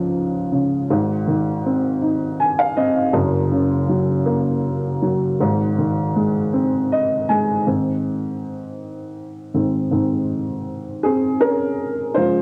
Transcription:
Already playing: C#2 G#2 C#3 F3
0.52 C#3
0.90 G#1 G#2
1.27 D#3
1.66 C4
2.02 D#4
2.40 G#5
2.59 F5
2.77 C4 D#5
3.13 F#1 F#2
3.51 C#3
3.89 F#3
4.26 A#3
5.02 F#3
5.40 G#1 G#2
5.78 D#3
6.16 G#3
6.53 C4
6.92 D#5
7.29 G#3 G#5
7.67 G#2 D#3 C4
9.54 G#2 D#3 C4
9.91 G#2 D#3 C4
11.03 C4 G#4
11.41 C#4 A#4
12.15 C#3 F3 G#3 F4 C5

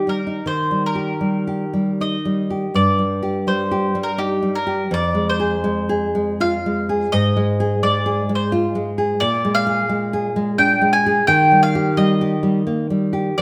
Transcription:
Already playing: D#3 D#4
0.07 G3 A#4
0.27 D#4
0.46 D#3 C5
0.71 G3
0.86 A#4
0.95 G4
1.21 G3
1.47 G4
1.73 G3
2.01 D#4 D#5
2.25 G3
2.50 G4
2.74 G2 D5
2.99 G3
3.23 G4
3.47 G3 C5
3.71 G4
3.95 G3
4.03 A#4
4.18 D#4 G4
4.42 G3
4.55 A#4
4.67 G4
4.91 F2 D5
5.15 G#3
5.29 C5
5.40 G#4
5.64 G#3
5.89 G#4
6.15 G#3
6.40 F4 F5
6.66 G#3
6.89 G#4
7.12 G#2 D#5
7.37 G#3
7.60 G#4
7.83 G#3 D5
8.06 G#4
8.29 G#3
8.35 C5
8.52 F4
8.75 G#3
8.98 G#4
9.20 A#2 D5
9.45 G#3
9.55 F5
9.67 G#4
9.89 G#3
10.13 G#4
10.36 G#3
10.58 D4 G5
10.81 G#3
10.93 G#5
11.06 G#4
11.27 D#3 G5
11.52 G3
11.63 F5
11.75 G4
11.97 G3 D#5
12.21 G4
12.43 G3
12.67 A#3
12.90 G3
13.13 G4
13.38 F2 D5

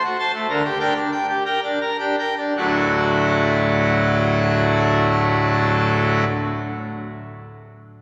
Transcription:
0.04 F#4
0.19 C5 A5
0.34 A3
0.49 D2 D3 A#4
0.65 G4
0.80 D4 A#4 G5
0.96 D4
1.12 G5
1.29 G4
1.45 A#4 G5
1.63 D4
1.81 A#4
1.99 D4 G4
2.19 A#4 G5
2.37 D4
2.56 D1 D2 A2 F#3 A3 D4 F#4

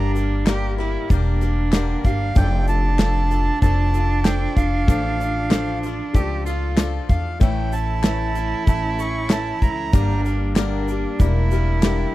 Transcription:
Already playing: G1 G2 D3 G3 A#3 D4 G4 A#4 D5 A#5
0.15 G3 A#3 G4 A#4, shaker
0.46 G2 D3 G3 A#3 D4 G4 A#4 D5, snare, clap, shaker
0.78 G3 A#3 E4 G4 A#4
1.09 E1 G3 A#3 D4 G4 A#4 D5, kick, shaker
1.14 A#4
1.41 G3 A#3 G4 A#4, shaker
1.72 G2 D3 G3 A#3 D4 G4 A#4 D5, snare, clap, shaker
1.76 A#4
2.04 G1 G3 A#3 G4 A#4 F5, kick, shaker
2.35 F1 F2 F3 A3 D4 F4 A4 D5 G5, kick, shaker
2.68 D4 F4 A4 A5, shaker
2.98 F3 A3 D4 F4 A4 D5, snare, clap, shaker
3.31 D4 F4 A4, shaker
3.62 F1 F3 A3 D4 F4 A4 D5 A5, kick, shaker
3.94 D4 F4 A4, shaker
4.24 F3 A3 D4 F4 A4 D5 G5, snare, clap, shaker
4.57 F1 F4 A4 F5, kick, shaker
4.61 D4
4.87 F1 A1 F3 A3 D4 F4 A4 D5, kick, shaker
5.20 D4 F4 A4, shaker
5.50 F3 A3 D4 A4 D5, snare, clap, shaker
5.54 F4 A4
5.83 D4 F4 A4, shaker
6.13 C#2 F3 A3 D4 F4 G4 A4 D5, kick, shaker
6.46 D4 F4 A4, shaker
6.76 F3 A3 D4 F4 A4 D5, snare, clap, shaker
7.09 E2 D4 F4 A4 F5, kick, shaker
7.40 A1 A2 E3 A3 C#4 E4 A4 C#5 E5 G5, kick, shaker
7.72 A3 C#4 E4 A4 A5, shaker
8.03 A2 E3 A3 C#4 E4 A4 C#5 E5, snare, clap, shaker
8.35 A3 C#4 E4 A4, shaker
8.66 A1 A3 C#4 E4 C#5 E5 A5, kick, shaker
8.70 A4
8.99 A3 C#4 E4 A4 C#6, shaker
9.30 A2 E3 A3 C#4 E4 A4 C#5 E5 A5, snare, clap, shaker
9.62 C#2 A3 C#4 E4 A#5, kick, shaker
9.93 G1 G2 D3 G3 A#3 D4 G4 A#4 D5, kick, shaker
10.25 G3 A#3 G4 A#4, shaker
10.56 G2 D3 G3 A#3 D4 G4 A#4 D5, snare, clap, shaker
10.88 G3 A#3 G4 A#4, shaker
11.19 E1 G3 A#3 D4 E4 G4 A#4 D5, kick, shaker
11.51 G3 A#3 G4 A#4, shaker
11.82 G2 D3 G3 A#3 D4 G4 A#4 D5, snare, clap, shaker

